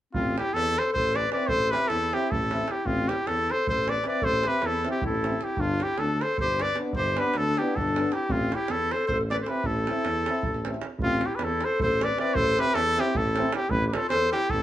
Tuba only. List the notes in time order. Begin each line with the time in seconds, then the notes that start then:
0.15 A1
0.55 E2
0.95 A1
1.49 A1
1.90 E2
2.31 A1
2.85 A1
3.27 E2
3.68 A1
4.23 A1
4.63 E2
5.05 A1
5.58 G1
5.99 D2
6.39 G1
6.93 G1
7.34 D2
7.75 G1
8.29 A1
8.69 E2
9.10 A1
9.63 A1
10.05 E2
10.44 A1
10.99 A1
11.40 E2
11.80 A1
12.34 A1
12.75 E2
13.14 A1
13.69 A1
14.10 E2
14.52 A1